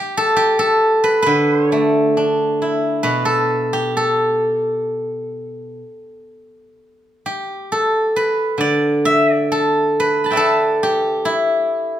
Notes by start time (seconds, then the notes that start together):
Already playing: G4
0.17 A4
0.36 G4
0.59 A4
1.04 B4
1.22 D3 B4
1.50 C5
1.64 C#5
1.72 A3
1.78 D5
2.17 D4
2.62 E4
3.03 B2 B4
3.25 A4
3.73 G4
3.97 A4
7.26 G4
7.72 A4
8.16 B4
8.58 D3 D5
9.05 E5
9.32 D5
9.52 A4
10.00 B4
10.24 A5 B5
10.31 D5 E5 G5
10.36 A4 B4
10.83 G4
11.25 E4